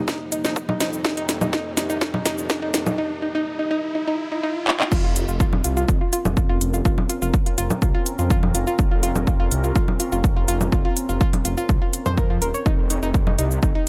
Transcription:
Already playing: F2 C3 A#3 D#4 G4, riser
0.08 C2 D#4, kick, snare, shaker
0.32 D#4, closed hi-hat, shaker
0.45 F2 D#4, snare, shaker
0.56 kick, shaker
0.69 D#4, low conga
0.80 F2 D#4, snare, closed hi-hat, shaker
0.93 shaker
1.05 F1 D#4, kick, snare, shaker
1.17 D#4, closed hi-hat
1.29 snare, closed hi-hat, shaker
1.41 F1 D#4, low conga, shaker
1.53 D#4, kick, snare, shaker
1.77 C2 D#4, snare, closed hi-hat, shaker
1.90 D#4, shaker
2.01 F1, kick, snare, shaker
2.14 D#4, low conga
2.26 D#4, snare, closed hi-hat, shaker
2.38 F1, shaker
2.50 D#4, kick, snare, shaker
2.62 D#4
2.74 F1, snare, closed hi-hat, shaker
2.86 D#4, low conga, shaker
2.98 D#4
3.22 D#4
3.35 D#4
3.59 D#4
3.71 D#4
3.95 D#4
4.07 D#4
4.32 D#4
4.43 D#4
4.68 D#4, clap
4.80 D#4, clap
4.92 F1 C4 C#4 F4 A#4, kick, crash, shaker
5.04 F4
5.16 closed hi-hat, shaker
5.28 F1 F4, shaker
5.40 F4, kick, shaker
5.53 low conga
5.64 C2 F4, closed hi-hat, shaker
5.77 F4, shaker
5.88 F1, kick, shaker
6.01 F4
6.13 F4, closed hi-hat, shaker
6.25 F1, low conga, shaker
6.37 F4, kick, shaker
6.49 F4
6.61 F1, closed hi-hat, shaker
6.74 F4, shaker
6.85 F1 F4, kick, shaker
6.98 low conga
7.09 F4, closed hi-hat, shaker
7.22 F1 F4, shaker
7.34 kick, shaker
7.46 F4, closed hi-hat
7.58 F1 F4, closed hi-hat, shaker
7.70 low conga, shaker
7.82 C2 F4, kick, shaker
7.95 F4
8.06 closed hi-hat, shaker
8.19 F2 F4, shaker
8.30 F4, kick, shaker
8.43 low conga
8.55 F1 F4, closed hi-hat, shaker
8.67 F4, shaker
8.79 F1, kick, shaker
8.91 F4
9.03 F4, closed hi-hat, shaker
9.16 F1, low conga, shaker
9.27 F4, kick, shaker
9.40 F4
9.51 C2, closed hi-hat, shaker
9.64 F4, shaker
9.76 F1 F4, kick, shaker
9.88 low conga
10.00 F4, closed hi-hat, shaker
10.12 F1 F4, shaker
10.24 kick, shaker
10.36 F4
10.48 F1 F4, closed hi-hat, shaker
10.61 low conga, shaker
10.72 F1 F4, kick, shaker
10.85 F4
10.97 closed hi-hat, shaker
11.09 F1 F4, shaker
11.21 F4, kick, shaker
11.33 closed hi-hat, low conga
11.45 F1 F4, closed hi-hat, shaker
11.57 F4, shaker
11.69 C2, kick, shaker
11.82 F4
11.93 closed hi-hat, shaker
12.06 F2 C5, low conga, shaker
12.18 A#4, kick, shaker
12.30 F4
12.42 D#1 A#4, closed hi-hat, shaker
12.54 C#5, shaker
12.66 F1 A#3 D#4 G4, kick, shaker
12.90 D#4, closed hi-hat, shaker
13.03 F1 D#4, shaker
13.14 kick, shaker
13.27 D#4, low conga
13.38 C2 D#4, closed hi-hat, shaker
13.51 shaker
13.63 F1 D#4, kick, shaker
13.75 D#4

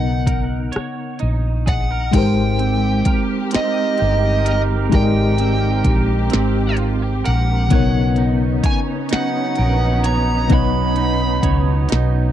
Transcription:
Already playing: B1 C#3 B3 D#4 A#4 C#5 D#5 F#5
0.26 A#4, kick, closed hi-hat
0.72 C#5, closed hi-hat
0.76 muted fretless electric bass stroke, cross-stick
1.19 A#1 D#4, closed hi-hat
1.66 G#4 F#5, kick, closed hi-hat
1.91 A#4
2.11 G#1 G#3 C4 D#4 G4 A#4 G5, kick, closed hi-hat, crash
2.16 A#4 C5
2.59 C4, closed hi-hat
3.05 A#4, kick, closed hi-hat
3.51 C4 D#4 G4 A#4, snare, closed hi-hat
3.55 D#5, muted fretless electric bass stroke
3.98 G4, closed hi-hat
4.02 G1
4.45 A#4 D#5, closed hi-hat
4.89 G#1 G#3 D#4 G4 A#4, kick, closed hi-hat
4.94 A#4 D5 G5
5.03 D#5
5.38 C4, closed hi-hat
5.84 A#1 A#4, kick, closed hi-hat
6.30 C4, snare, closed hi-hat
6.34 G#1
6.77 F4, closed hi-hat
7.02 G4
7.24 A#1 A#4 F#5, closed hi-hat
7.68 B1 C#3 B3 C#4 D#4 C#5, kick, closed hi-hat
7.74 A#4 C#5
8.16 D#4, closed hi-hat
8.64 C#5 G#5, muted fretless electric bass stroke, kick, closed hi-hat
9.09 F#3 B3 D#4, snare, closed hi-hat
9.13 F#5, muted fretless electric bass stroke
9.55 A#1 A#4, closed hi-hat
10.04 C#5 A#5, closed hi-hat
10.48 B1 B2 B3 D#4 C#5, kick, closed hi-hat
10.53 C#5 D#5 B5
10.96 D#4, closed hi-hat
11.43 C#2 C#5, kick, closed hi-hat
11.89 B1 D#4, snare, closed hi-hat

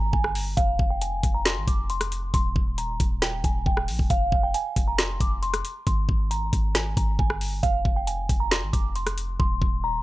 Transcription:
Already playing: G#1
0.13 G1 G#5, kick
0.24 cross-stick
0.35 open hi-hat
0.57 F1 F5, kick, closed hi-hat
0.79 F1, kick
0.90 G5
1.01 G#5, closed hi-hat
1.23 F1, kick, closed hi-hat
1.34 A#5
1.45 C6, snare, closed hi-hat
1.57 G#1
1.68 F1 D6, kick, closed hi-hat
1.90 C6, closed hi-hat
2.01 cross-stick, closed hi-hat
2.12 closed hi-hat
2.34 D#1 C6, kick, closed hi-hat
2.56 D#1, kick
2.78 A#5, closed hi-hat
3.00 D#1, kick, closed hi-hat
3.22 G5, snare, closed hi-hat
3.44 D#1 G#5, kick, closed hi-hat
3.66 D#1 G5, kick
3.77 cross-stick
3.88 A#1, open hi-hat
3.99 D#1, kick
4.10 F1 F5, kick, closed hi-hat
4.32 F1, kick
4.43 G5
4.54 G#5, closed hi-hat
4.76 F1, kick, closed hi-hat
4.88 A#5
4.98 snare, closed hi-hat
5.20 F1 D6, kick, closed hi-hat
5.42 C6, closed hi-hat
5.54 cross-stick, closed hi-hat
5.65 closed hi-hat
5.87 G#1 C6, kick, closed hi-hat
6.09 G#1, kick
6.31 A#5, closed hi-hat
6.53 G#1, kick, closed hi-hat
6.75 G#5, snare, closed hi-hat
6.97 G#1 A#5, kick, closed hi-hat
7.19 G1 G#5, kick
7.30 cross-stick
7.41 open hi-hat
7.63 F1 F5, kick, closed hi-hat
7.85 F1, kick
7.96 G5
8.07 G#5, closed hi-hat
8.29 F1, kick, closed hi-hat
8.40 A#5
8.51 C6, snare, closed hi-hat
8.62 G#1
8.73 F1 D6, kick, closed hi-hat
8.96 C6, closed hi-hat
9.07 cross-stick, closed hi-hat
9.18 closed hi-hat
9.39 D#1 C6, kick
9.62 D#1, kick
9.84 A#5

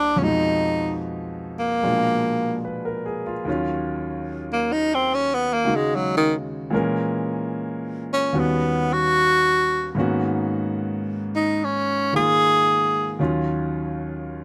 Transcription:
Already playing: C2 C3 A#3 D4 E4
0.16 F2 F3 C#4
0.22 B2 G#3 D#4
0.27 D#4
1.59 A#3
1.83 A#2 B2 F3 G#3 D4
2.65 B4
2.85 A#4
3.06 G#4
3.26 F4
3.45 D#2 D#3 F#3 C#4
3.50 F4
4.53 A#3
4.72 D#4
4.94 C4
5.14 C#4
5.34 B3
5.53 A#3
5.64 C#3 G#3 D#4 F#4
5.75 G#3
5.95 F#3
6.17 D#3
6.70 A#2 E3 G#3 C#4
6.74 A#4
8.13 C#4
8.33 D#2 D#3 G3 B3 C#4 F#4
8.39 B3
8.93 F#4
9.95 G#2 D#3 A#3 B3 C#4
10.00 F#4
11.35 D#4
11.64 C#4
12.13 D#3 G#3 A#3 F4 G#4
13.19 D#2 D#3 F#3 C#4 F4

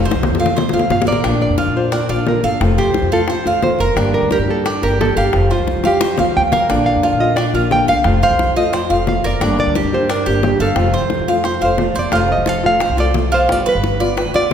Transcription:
Already playing: C3 F3 A3 C4 F4 A4
0.05 C5
0.11 C2, high bongo
0.23 low bongo
0.30 F2
0.35 low bongo
0.39 F3 A3 C4 F4 F5
0.46 low bongo
0.56 C5, muted nylon-string guitar stroke, low bongo
0.69 F1, low bongo
0.73 F3 A3 C4 F4 F5
0.79 low bongo
0.90 G1 F3 A3 C4 F4 F5, low bongo
1.02 low bongo
1.07 A1 A#4 D5
1.12 low bongo
1.24 A#1 D3 A#3 D4 F4, high bongo
1.42 D5, high bongo
1.50 F2
1.58 F4, high bongo
1.66 A#2
1.76 A#3 D4 F4 C5
1.92 D4 A#4, muted nylon-string guitar stroke, high bongo
2.09 A#1 A#3 D4 F4 D5, high bongo
2.27 D3 A#3 D4 F4 A#4, high bongo, low bongo
2.43 G1 A4 F5, high bongo
2.60 F1 C3 F3 A3 C4 F4, high bongo
2.78 G4 C5, high bongo
2.86 C2
2.94 high bongo
3.02 F2
3.12 F3 A3 C4 F4 A4 F5
3.28 C5, muted nylon-string guitar stroke, high bongo
3.45 F1 F3 A3 C4 F4 F5, high bongo
3.62 F3 A3 C4 F4 C5, high bongo, low bongo
3.79 F1 A#4, high bongo
3.95 G1 D3 G3 A#3 D4 G4, high bongo
4.14 A#4, high bongo
4.22 D2
4.31 G4 A#4, high bongo
4.39 G2
4.48 G3 A#3 D4 G4 A4
4.65 D4 G4, muted nylon-string guitar stroke, high bongo
4.82 G1 G3 A#3 D4 G4 A#4, high bongo
4.98 G3 A#3 D4 G4 A4, high bongo, low bongo
5.17 G1 G4 F5, high bongo
5.33 F1 F3 G3 C4 F4, high bongo
5.50 F4 C5, high bongo
5.59 C2
5.67 high bongo
5.77 F2
5.84 G3 C4 F4 G4 F5, high bongo
6.01 C5, muted nylon-string guitar stroke, high bongo
6.18 D#2 G3 C4 F4 F5, low bongo
6.35 D2 F3 G3 C4 F4 G5
6.52 C2 A#4 F5, low bongo
6.68 A#1 D3 A#3 D4 F4, high bongo
6.86 F5, high bongo
6.96 F2
7.03 F4, high bongo
7.12 A#2
7.20 A#3 D4 F4 D#5
7.36 D4 D5, muted nylon-string guitar stroke, high bongo
7.54 A#1 A#3 D4 F4, high bongo
7.71 D3 A#3 D4 F4 G5, high bongo, low bongo
7.87 C2 F5, high bongo
8.04 F1 C3 F3 A3 C4 F4, high bongo
8.22 C5 F5, high bongo
8.30 C2
8.39 high bongo
8.47 F2
8.56 F3 A3 C4 F4 D#5 F5
8.73 C5 D5, muted nylon-string guitar stroke, high bongo
8.90 F1 F3 A3 C4 F4 F5, high bongo
9.07 F3 A3 C4 F4 F5, high bongo, low bongo
9.24 F1 A#4 D5, high bongo
9.41 G1 D3 G3 A#3 D4 G4, high bongo
9.59 D5, high bongo
9.66 D2
9.75 G4, high bongo
9.84 G2
9.93 G3 A#3 D4 G4 C5
10.10 D4 A#4, muted nylon-string guitar stroke, high bongo
10.26 G1 G3 A#3 D4 G4, high bongo
10.43 G3 A#3 D4 G4, high bongo, low bongo
10.60 G1 A4 F5, high bongo
10.76 F1 C3 F3 A3 C4 F4, high bongo
10.94 C5, high bongo
11.02 C2
11.10 high bongo
11.19 F2
11.28 F3 A3 C4 F4 F5
11.44 C5, muted nylon-string guitar stroke, high bongo
11.61 F1 F3 A3 C4 F4 C5 F5, high bongo
11.78 F3 A3 C4 F4, high bongo, low bongo
11.95 F1 C5, high bongo
11.99 D5
12.12 F1 C3 F3 A3 C4 F4 C5, high bongo
12.28 D#5, high bongo
12.38 F1
12.46 A4 F5, high bongo
12.63 F3 A3 C4 F4 F5
12.80 C5, muted nylon-string guitar stroke, high bongo
12.90 C2
12.97 F3 A3 C4 F4 A4 D5, high bongo
13.14 F3 A3 C4 F4, high bongo, low bongo
13.32 F4 C5, high bongo
13.49 G1 G3 B3 F4 D5, high bongo
13.66 B4, high bongo
13.75 G1
13.84 high bongo
14.00 B3 F4 D5
14.17 B4, muted nylon-string guitar stroke, high bongo
14.26 D2
14.34 B3 F4 D5, high bongo

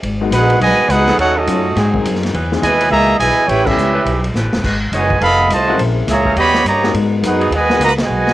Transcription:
0.03 G#1, ride
0.21 G#3 A#3 B3 D#4 F#4
0.31 A#1 B3 D#4 F#4 G#4 B4 F#5, hi-hat pedal, ride
0.50 ride
0.60 B1 B2 D#3 G#3 F#4 B4 D#5 G#5, ride
0.78 muted upright bass stroke
0.89 C#2 B3 D#4 F#4 G#4 B4 F#5, hi-hat pedal, ride
1.07 F#3 C#4 D#4 A4, snare, ride
1.18 D#2 A3 C#4 D#4 F#4 A4 C#5 F#5, ride
1.37 F#3 A3 C#4 D#4 F#4 A4 D#5
1.46 F#2 F#3 A3 C#4 D#4 F4, hi-hat pedal, ride
1.76 G#2 F#3 C4 D#4 G#4, snare, ride
1.94 F#3 A#3 C4 D#4 G#4, kick
2.04 F#2, hi-hat pedal, ride
2.15 snare
2.23 snare, ride
2.33 E2 E3 C#4 D#4 B4, ride
2.52 E3 B3 C#4 D#4 G#4, snare
2.62 D#2 B2 E3 G#3 E4 B4 D#5 G#5, hi-hat pedal, ride
2.80 E3 C#4 D#4 B4, ride
2.89 C#2 B2 E3 A#3 G#4 D#5 E5 A#5
3.18 B1 B2 E3 G#3 E4 B4 D#5 G#5, hi-hat pedal, ride
3.47 A1 C#4 E4 G4 B4 C#5 G5, ride
3.64 G3 B3 C#4 E4 G4 A4 B4 E5, kick, crash
3.77 C#2, hi-hat pedal
3.93 A3 C#4 G4 B4
4.05 B1, ride
4.24 ride
4.34 A1 A3 C#4 G4 B4, snare, hi-hat pedal
4.44 G1
4.53 E1, snare
4.64 G#1 G#3 D#4 F#4 B4, kick, crash
4.92 F#1 B2 D#3 G#3 D#4 F#4 B4 C#5 D#5 G#5, hi-hat pedal, ride
5.10 kick
5.20 F1 C3 D#3 B3 A4 D#5 F5 B5, ride
5.49 C2 C3 D#3 A3 F4 D#5, hi-hat pedal, ride
5.53 C5 A5
5.67 G#3 C4 C#4 E4 F#4 A#4
5.78 A#1, ride
6.07 C#2 C#3 E3 A#3 G#4 C#5 E5 A#5, snare, hi-hat pedal, ride
6.25 G3 C#4 D#4 A#4, kick
6.36 D#2 C#3 G3 B3 G4 C#5 D#5 B5, ride
6.54 snare
6.64 G2 C#3 G3 A#3 G4 C#5 D#5 A#5, hi-hat pedal, ride
6.82 F#3 G#3 B3 D#4 F#4 G#4 A#4, snare
6.93 G#2, ride
7.22 F#2 G#3 B3 D#4 F#4 G#4 A#4 B4 F#5, hi-hat pedal, ride
7.40 F#3 B3 D#4 G#4, ride
7.50 D#2 B2 D#3 G#3, ride
7.56 F#4 B4 D#5 G#5
7.70 G#3 B3 D#4 F#4 A#4, snare
7.79 C#2 A#3, hi-hat pedal, ride
7.84 F#4 B4 D#5 A#5
7.98 B2 D#3 G#3, snare, ride
8.03 F#4 B4 D#5 G#5
8.09 B1
8.27 snare

